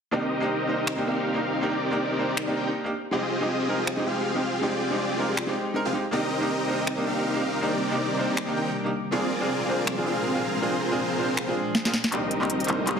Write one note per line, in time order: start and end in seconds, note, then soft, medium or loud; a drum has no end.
0.11 0.21 A#3 medium
0.11 1.04 C4 medium
0.11 0.22 D4 medium
0.11 1.04 D#4 medium
0.11 0.22 D#4 medium
0.11 1.04 G4 medium
0.11 0.22 G4 medium
0.11 1.04 A#4 medium
0.11 1.04 D#5 loud
0.40 0.46 A#3 medium
0.40 0.46 D4 medium
0.40 0.46 D#4 medium
0.40 0.47 G4 medium
0.67 0.78 A#3 medium
0.67 0.78 D4 medium
0.67 0.78 D#4 medium
0.67 0.79 C5 medium
0.87 finger snap medium
0.97 1.32 A#3 medium
0.97 1.32 D4 medium
0.97 1.33 D#4 medium
0.97 1.33 G4 medium
1.06 1.60 C4 medium
1.06 1.60 D#4 medium
1.06 1.60 G4 medium
1.06 1.60 A#4 medium
1.06 1.60 F5 medium
1.34 1.39 A#3 medium
1.34 1.40 D4 medium
1.34 1.40 D#4 medium
1.34 1.40 G4 medium
1.61 1.71 A#3 medium
1.61 2.54 C4 medium
1.61 1.72 D4 medium
1.61 2.54 D#4 medium
1.61 1.72 D#4 medium
1.61 2.54 G4 medium
1.61 1.72 G4 medium
1.61 2.54 A#4 medium
1.61 2.54 D5 loud
1.91 1.96 A#3 medium
1.91 1.96 D4 medium
1.91 1.96 D#4 medium
1.91 1.97 G4 medium
2.17 2.28 A#3 medium
2.17 2.28 D4 medium
2.17 2.28 D#4 medium
2.17 2.29 C5 medium
2.37 finger snap loud
2.47 2.82 A#3 medium
2.47 2.83 D4 medium
2.47 2.83 D#4 medium
2.47 2.83 G4 medium
2.56 2.70 C4 medium
2.56 2.70 D#4 medium
2.56 2.70 G4 medium
2.56 2.70 A#4 medium
2.56 2.70 G5 medium
2.84 2.89 A#3 medium
2.84 2.90 D4 medium
2.84 2.90 D#4 medium
2.84 2.90 G4 medium
3.11 3.21 G#3 medium
3.11 3.22 C4 medium
3.11 4.04 C4 medium
3.11 3.22 D#4 medium
3.11 4.04 F4 medium
3.11 4.04 G4 medium
3.11 3.22 G4 medium
3.11 4.04 G#4 medium
3.11 4.04 D#5 medium
3.40 3.46 G#3 medium
3.40 3.46 C4 medium
3.40 3.46 D#4 medium
3.40 3.47 G4 medium
3.67 3.78 G#3 medium
3.67 3.78 C4 medium
3.67 3.78 D#4 medium
3.67 3.79 A#4 medium
3.87 finger snap medium
3.97 4.32 G#3 medium
3.97 4.33 C4 medium
3.97 4.33 D#4 medium
3.97 4.33 G4 loud
4.06 4.60 C4 medium
4.06 4.60 F4 medium
4.06 4.60 G4 medium
4.06 4.60 G#4 medium
4.06 4.60 F5 medium
4.34 4.39 G#3 medium
4.34 4.40 C4 medium
4.34 4.40 D#4 medium
4.34 4.40 G4 medium
4.61 4.71 G#3 medium
4.61 4.72 C4 medium
4.61 5.54 C4 medium
4.61 4.72 D#4 medium
4.61 5.54 F4 medium
4.61 5.54 G4 medium
4.61 4.72 G4 medium
4.61 5.54 G#4 medium
4.61 5.54 D5 loud
4.91 4.96 G#3 medium
4.91 4.96 C4 medium
4.91 4.96 D#4 medium
4.91 4.97 G4 medium
5.17 5.28 G#3 medium
5.17 5.28 C4 medium
5.17 5.28 D#4 medium
5.17 5.29 A#4 medium
5.37 finger snap medium
5.47 5.72 G#3 medium
5.47 5.73 C4 medium
5.47 5.73 D#4 medium
5.47 5.74 G4 medium
5.74 5.84 G#3 medium
5.74 5.84 C4 medium
5.74 5.85 D#4 medium
5.74 5.85 A#4 loud
5.85 5.93 C4 medium
5.85 5.93 F4 medium
5.85 5.93 G4 medium
5.85 5.93 G#4 medium
5.85 5.93 F5 medium
5.93 6.03 G#3 medium
5.93 6.03 C4 medium
5.93 6.03 D#4 medium
5.93 6.04 G4 medium
6.11 8.91 C3 medium
6.11 8.91 D#3 medium
6.11 8.91 G3 medium
6.11 6.21 A#3 medium
6.11 8.91 A#3 medium
6.11 7.04 C4 medium
6.11 6.22 D4 medium
6.11 7.04 D#4 medium
6.11 6.22 D#4 medium
6.11 7.04 G4 medium
6.11 6.22 G4 medium
6.11 7.04 A#4 medium
6.11 7.04 D#5 medium
6.11 8.91 D6 medium
6.40 6.46 A#3 medium
6.40 6.46 D4 medium
6.40 6.46 D#4 medium
6.40 6.47 G4 medium
6.67 6.78 A#3 medium
6.67 6.78 D4 medium
6.67 6.78 D#4 medium
6.67 6.79 C5 medium
6.87 finger snap medium
6.97 7.32 A#3 medium
6.97 7.33 D4 medium
6.97 7.33 D#4 medium
6.97 7.33 G4 loud
7.06 7.60 C4 medium
7.06 7.60 D#4 medium
7.06 7.60 G4 medium
7.06 7.60 A#4 medium
7.06 7.60 F5 medium
7.34 7.39 A#3 medium
7.34 7.40 D4 medium
7.34 7.40 D#4 medium
7.34 7.40 G4 medium
7.61 7.71 A#3 medium
7.61 8.54 C4 medium
7.61 7.72 D4 medium
7.61 8.54 D#4 medium
7.61 7.72 D#4 medium
7.61 8.54 G4 medium
7.61 7.72 G4 medium
7.61 8.54 A#4 medium
7.61 8.54 D5 loud
7.90 7.96 A#3 medium
7.90 7.96 D4 medium
7.90 7.96 D#4 medium
7.90 7.97 G4 loud
8.17 8.28 A#3 medium
8.17 8.28 D4 medium
8.17 8.28 D#4 medium
8.17 8.29 C5 medium
8.37 finger snap medium
8.47 8.82 A#3 medium
8.47 8.82 D4 medium
8.47 8.83 D#4 medium
8.47 8.83 G4 loud
8.56 8.70 C4 medium
8.56 8.70 D#4 medium
8.56 8.70 G4 medium
8.56 8.70 A#4 medium
8.56 8.70 G5 medium
8.84 8.89 A#3 medium
8.84 8.90 D4 medium
8.84 8.90 D#4 medium
8.84 8.90 G4 medium
8.93 12.09 A#2 medium
8.93 12.09 F3 medium
8.93 12.09 G#3 medium
8.93 12.09 D4 medium
8.93 12.09 C5 medium
9.11 9.21 C4 medium
9.11 10.04 C4 medium
9.11 9.22 D4 medium
9.11 10.04 F4 medium
9.11 9.22 F4 medium
9.11 10.04 G#4 medium
9.11 9.22 G#4 medium
9.11 10.04 A#4 medium
9.11 10.04 D5 loud
9.40 9.46 C4 medium
9.40 9.46 D4 medium
9.40 9.46 F4 medium
9.40 9.47 G#4 medium
9.67 9.78 C4 medium
9.67 9.78 D4 medium
9.67 9.78 F4 medium
9.67 9.79 C5 medium
9.87 finger snap medium
9.97 10.32 C4 medium
9.97 10.32 D4 medium
9.97 10.33 F4 medium
9.97 10.33 G#4 medium
10.06 10.60 C4 medium
10.06 10.60 F4 medium
10.06 10.60 G#4 medium
10.06 10.60 A#4 medium
10.06 10.60 F5 medium
10.34 10.39 C4 medium
10.34 10.40 D4 medium
10.34 10.40 F4 medium
10.34 10.40 G#4 medium
10.61 10.71 C4 medium
10.61 11.54 C4 medium
10.61 10.72 D4 medium
10.61 11.54 F4 medium
10.61 10.72 F4 medium
10.61 11.54 G#4 medium
10.61 10.72 G#4 medium
10.61 11.54 A#4 medium
10.61 11.54 C5 medium
10.90 10.96 C4 medium
10.90 10.96 D4 medium
10.90 10.96 F4 medium
10.90 10.97 G#4 medium
11.18 11.28 C4 medium
11.18 11.28 D4 medium
11.18 11.28 F4 medium
11.18 11.29 C5 medium
11.37 finger snap loud
11.47 11.82 C4 medium
11.47 11.83 D4 medium
11.47 11.83 F4 medium
11.47 11.83 G#4 loud
11.75 snare medium
11.84 11.90 C4 medium
11.84 11.93 C4 medium
11.84 11.90 D4 medium
11.84 11.93 F4 medium
11.84 11.90 F4 medium
11.84 11.93 G#4 medium
11.84 11.91 G#4 medium
11.84 11.93 A#4 medium
11.84 11.93 F5 medium
11.84 snare medium
11.94 snare medium
12.04 snare medium
12.11 13.00 C2 medium
12.11 13.00 C3 medium
12.11 13.00 D#3 medium
12.11 13.00 G3 medium
12.11 12.21 A#3 medium
12.11 13.00 A#3 medium
12.11 13.00 C4 medium
12.11 12.22 D4 medium
12.11 13.00 D#4 medium
12.11 12.22 D#4 medium
12.11 13.00 G4 medium
12.11 12.22 G4 loud
12.11 13.00 A#4 medium
12.11 13.00 D#5 medium
12.11 clap soft
12.11 closed hi-hat medium
12.11 riser medium
12.31 closed hi-hat medium
12.41 12.46 A#3 medium
12.41 12.46 D4 medium
12.41 12.46 D#4 medium
12.41 12.47 G4 medium
12.41 clap soft
12.50 closed hi-hat medium
12.60 closed hi-hat soft
12.64 12.78 A#3 medium
12.64 12.78 D4 medium
12.64 closed hi-hat medium
12.68 12.78 D#4 medium
12.68 12.79 C5 medium
12.68 clap soft
12.68 closed hi-hat medium
12.87 clap soft
12.87 closed hi-hat medium
12.97 13.00 A#3 medium